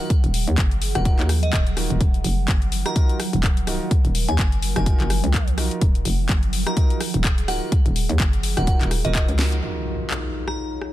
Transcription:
Already playing: D#3 F3 F#3 G#4 F#5
0.10 kick, closed hi-hat
0.24 D#1, closed hi-hat
0.34 open hi-hat
0.48 D#2, closed hi-hat
0.58 F#1, kick, clap, closed hi-hat
0.71 closed hi-hat
0.82 open hi-hat
0.95 D#1 D#4 F4 F#4 A#4 F#5, cross-stick, closed hi-hat
1.05 D#4 F4 F#4 A#4 F#5, kick, closed hi-hat
1.19 D#2, clap, closed hi-hat
1.29 cross-stick, open hi-hat
1.43 D#5, closed hi-hat
1.53 D#1, kick, clap, closed hi-hat
1.67 closed hi-hat
1.77 D#4 F4 F#4 A#4, cross-stick, open hi-hat
1.90 D#1, closed hi-hat
2.01 D#1 A#4, kick, closed hi-hat
2.14 closed hi-hat
2.24 F1, open hi-hat
2.48 F#1, kick, clap, closed hi-hat
2.62 closed hi-hat
2.72 open hi-hat
2.86 D#4 F4 F#4 A#4 A#5, cross-stick, closed hi-hat
2.96 D#4 F4 F#4 A#4, kick, closed hi-hat
3.09 closed hi-hat
3.20 cross-stick, open hi-hat
3.33 D#1, closed hi-hat
3.43 kick, clap, closed hi-hat
3.57 closed hi-hat
3.67 D#4 F4 F#4 A#4, cross-stick, open hi-hat
3.91 kick, closed hi-hat
4.05 D#1, closed hi-hat
4.15 open hi-hat
4.28 D#2 G#5, closed hi-hat
4.39 F#1, kick, clap, closed hi-hat
4.52 closed hi-hat
4.62 open hi-hat
4.76 F1 D#4 F4 F#4 A#4 G#5, cross-stick, closed hi-hat
4.86 D#4 F4 F#4 A#4, kick, closed hi-hat
5.00 F#1, clap, closed hi-hat
5.10 cross-stick, open hi-hat
5.24 C#2, closed hi-hat
5.34 kick, clap, closed hi-hat
5.48 closed hi-hat
5.58 D#4 F4 F#4 A#4, cross-stick, open hi-hat
5.71 closed hi-hat
5.81 D#1 G#4, kick, closed hi-hat
5.95 closed hi-hat
6.05 F1, open hi-hat
6.29 F#1, kick, clap, closed hi-hat
6.43 closed hi-hat
6.53 open hi-hat
6.67 D#4 F4 F#4 A#4 A#5, cross-stick, closed hi-hat
6.77 D#4 F4 F#4 A#4, kick, closed hi-hat
6.90 closed hi-hat
7.01 cross-stick, open hi-hat
7.14 D#1, closed hi-hat
7.24 kick, clap, closed hi-hat
7.38 closed hi-hat
7.48 D#4 F4 F#4 A#4 F#5, cross-stick, open hi-hat
7.72 kick, closed hi-hat
7.86 D#1, closed hi-hat
7.96 open hi-hat
8.09 D#2, closed hi-hat
8.20 F#1, kick, clap, closed hi-hat
8.33 closed hi-hat
8.43 open hi-hat
8.57 D#1 D#4 F4 F#4 A#4 F#5, cross-stick, closed hi-hat
8.67 D#4 F4 F#4 A#4 F#5, kick, closed hi-hat
8.81 D#1, clap, closed hi-hat
8.91 cross-stick, open hi-hat
9.05 D#1 D#4 F4 F#4 A#4 D#5, closed hi-hat
9.15 D#5, kick, clap, closed hi-hat
9.28 C#2, closed hi-hat
9.39 D#4 F4 F#4 A#4, snare, open hi-hat
9.52 closed hi-hat
9.62 F#3 A#3 D#4 F4 F#4 A#4, impact
9.79 G#4
10.11 clap
10.22 C#5
10.48 A#5, cross-stick
10.82 cross-stick

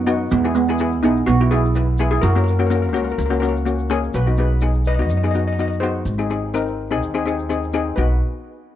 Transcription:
Already playing: F#2
0.07 B3 D#4 F#4, shaker
0.31 E2 G#3 B3, shaker
0.44 B3 E4 G#4
0.55 G#3 B3, shaker
0.68 B3 E4 G#4, shaker
0.78 B3 E4 G#4, shaker
0.92 shaker
1.03 B1 B3 D#4 E4 G#4, shaker
1.16 shaker
1.26 B1 B3 F#4, shaker
1.40 B3 E4 F#4
1.51 B3 E4 G#4, shaker
1.65 shaker
1.75 B3 E4 B4, shaker
1.98 B3 E4 G#4, shaker
2.11 E4 G#4
2.22 F#2 F#4 A#4, shaker
2.30 A#4
2.35 A#3 C#4 F#4 A#4, shaker
2.44 A#4, shaker
2.50 A#4
2.59 A#3 C#4 F#4 A#4, shaker
2.67 A#3 C#4 A#4, shaker
2.71 F#4 A#4
2.82 A#4, shaker
2.89 A#3 A#4
2.93 C#2 C#4 F#4, shaker
2.97 A#4
3.04 A#4
3.09 A#4, shaker
3.18 C#2 A#4, shaker
3.26 A#4
3.30 A#3 C#4 F#4 A#4
3.40 A#3 C#4 F#4 A#4, shaker
3.49 A#4
3.56 shaker
3.65 A#3 C#4 F#4, shaker
3.79 shaker
3.90 A#3 C#4 G#4, shaker
4.03 shaker
4.14 B1 F#4 B4, shaker
4.26 B3 D#4 F#4, shaker
4.37 B3 D#4 F#4 G#4 B4, shaker
4.61 B3 D#4 G#4, shaker
4.74 shaker
4.85 B4 D#5, shaker
4.94 D#5, shaker
4.99 B3 D#4 F#4 D#5
5.09 F#2 D#5, shaker
5.17 D#5
5.23 B3 D#4 G#4 D#5, shaker
5.31 B3 D#5, shaker
5.35 D#4 F#4
5.39 D#5
5.47 D#5, shaker
5.53 D#5
5.59 B3 D#4 F#4 D#5, shaker
5.68 D#5
5.73 shaker
5.80 B3 D#4 F#4 G#4 C5, shaker
6.05 G#1, shaker
6.18 C4 D#4 G#4, shaker
6.30 C4 D#4 G#4, shaker
6.54 C4 D#4 A#4, shaker
6.67 shaker
6.91 C4 D#4 G#4, shaker
7.01 D#2, shaker
7.14 C4 D#4 G#4, shaker
7.26 C4 D#4 G#4, shaker
7.39 shaker
7.49 C4 D#4 G#4, shaker
7.63 shaker
7.73 C4 D#4 G#4, shaker
7.96 B1 B3 D#4 F#4 B4, shaker

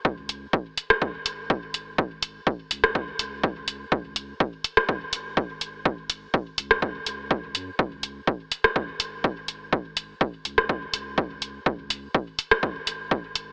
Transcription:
0.05 C#2, kick
0.29 closed hi-hat
0.53 kick
0.77 closed hi-hat
0.90 cross-stick
1.02 C#2, kick
1.26 G#1, closed hi-hat
1.50 kick
1.74 closed hi-hat
1.98 kick
2.23 closed hi-hat
2.47 kick
2.71 C#2, closed hi-hat
2.84 cross-stick
2.95 kick
3.19 C#2, closed hi-hat
3.43 kick
3.68 closed hi-hat
3.92 C#2, kick
4.16 closed hi-hat
4.40 kick
4.64 closed hi-hat
4.77 cross-stick
4.89 C#2, kick
5.13 G#1, closed hi-hat
5.37 kick
5.61 closed hi-hat
5.85 kick
6.10 closed hi-hat
6.34 kick
6.58 C#2, closed hi-hat
6.71 cross-stick
6.82 kick
7.06 C#2, closed hi-hat
7.31 kick
7.55 F#2, closed hi-hat
7.79 C#2, kick
8.03 closed hi-hat
8.27 kick
8.52 closed hi-hat
8.64 cross-stick
8.76 C#2, kick
9.00 G#1, closed hi-hat
9.24 kick
9.48 closed hi-hat
9.73 kick
9.97 closed hi-hat
10.21 kick
10.45 C#2, closed hi-hat
10.58 cross-stick
10.69 kick
10.93 C#2, closed hi-hat
11.18 kick
11.42 closed hi-hat
11.66 C#2, kick
11.90 closed hi-hat
12.14 kick
12.39 closed hi-hat
12.51 cross-stick
12.63 C#2, kick
12.87 G#1, closed hi-hat
13.11 kick
13.35 closed hi-hat

